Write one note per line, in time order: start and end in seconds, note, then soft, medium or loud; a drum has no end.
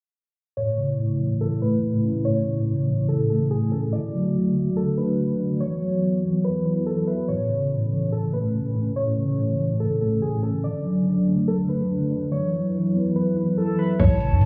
0.57 0.98 A2 medium
0.57 3.89 C#3 medium
0.57 3.89 A3 medium
0.57 3.89 E4 medium
0.57 1.37 C#5 loud
0.78 1.83 C#3 medium
0.99 1.40 A2 medium
1.20 2.25 E3 medium
1.41 1.82 A2 medium
1.41 1.59 A4 medium
1.62 2.67 A3 medium
1.62 2.21 B4 medium
1.83 2.24 A2 medium
2.04 3.09 C#4 medium
2.25 2.66 A2 medium
2.25 3.05 C#5 loud
2.46 3.51 C#3 medium
2.67 3.07 A2 medium
2.88 3.93 E3 medium
3.08 3.50 A2 medium
3.08 3.27 A4 medium
3.30 3.93 A3 medium
3.30 3.48 A4 medium
3.51 3.93 A2 medium
3.51 3.69 G#4 medium
3.71 3.93 C#4 medium
3.71 3.90 A4 medium
3.93 5.59 D3 medium
3.93 4.33 D3 medium
3.93 5.59 A3 medium
3.93 7.25 F#4 medium
3.93 4.73 D5 loud
4.13 5.18 F#3 medium
4.35 4.75 D3 medium
4.56 5.61 A3 medium
4.77 5.18 D3 medium
4.77 4.95 A4 medium
4.98 5.61 D4 medium
4.98 5.57 B4 medium
5.19 5.61 D3 medium
5.39 5.60 D5 medium
5.60 6.00 E3 medium
5.60 7.27 E3 medium
5.60 7.27 B3 medium
5.60 6.40 C#5 loud
5.82 6.87 F#3 medium
6.02 6.43 E3 medium
6.23 7.28 B3 medium
6.44 6.86 E3 medium
6.44 6.63 B4 medium
6.65 7.28 E4 medium
6.65 6.84 B4 medium
6.86 7.29 E3 medium
6.86 7.05 A4 medium
7.07 7.26 B4 medium
7.07 7.28 E5 medium
7.28 7.69 A2 medium
7.28 10.61 E3 medium
7.28 10.61 C#4 medium
7.28 12.28 A4 medium
7.28 8.08 C#5 loud
7.49 8.54 C#3 medium
7.70 8.11 A2 medium
7.91 8.96 E3 medium
8.12 8.53 A2 medium
8.12 8.31 A4 medium
8.33 9.38 A3 medium
8.33 8.92 B4 medium
8.54 8.95 A2 medium
8.75 9.80 C#4 medium
8.96 9.37 A2 medium
8.96 9.76 C#5 loud
9.17 10.22 C#3 medium
9.38 9.79 A2 medium
9.59 10.64 E3 medium
9.80 10.21 A2 medium
9.80 9.98 A4 medium
10.01 10.64 A3 medium
10.01 10.19 A4 medium
10.22 10.40 G#4 medium
10.43 10.64 C#4 loud
10.43 10.61 A4 medium
10.64 11.05 D3 medium
10.64 13.96 F#3 medium
10.64 12.30 D4 medium
10.64 11.44 D5 loud
10.85 11.90 F#3 medium
11.06 11.47 D3 medium
11.27 12.32 A3 medium
11.48 11.89 D3 medium
11.48 11.66 A4 medium
11.69 12.32 D4 medium
11.69 12.28 B4 medium
11.90 12.32 D3 medium
12.11 12.32 D5 medium
12.31 12.72 E3 medium
12.31 13.98 E4 medium
12.31 13.98 B4 medium
12.31 13.12 C#5 loud
12.53 13.58 F#3 medium
12.73 13.15 E3 medium
12.95 14.00 B3 medium
13.16 13.57 E3 medium
13.16 13.34 B4 medium
13.37 14.00 E4 medium
13.37 13.55 B4 medium
13.58 14.00 E3 medium
13.58 13.76 A4 medium
13.79 13.97 B4 medium
13.79 14.00 E5 medium
14.00 14.33 A1 loud
14.00 14.40 A2 medium
14.00 14.45 E3 medium
14.00 14.45 C#4 medium
14.00 14.45 A4 medium
14.00 14.45 C#5 loud
14.00 14.45 A5 loud
14.00 kick loud
14.00 closed hi-hat medium
14.00 crash loud
14.20 14.45 C#3 medium
14.20 closed hi-hat medium
14.31 14.45 A2 loud
14.41 14.45 A2 medium
14.41 closed hi-hat medium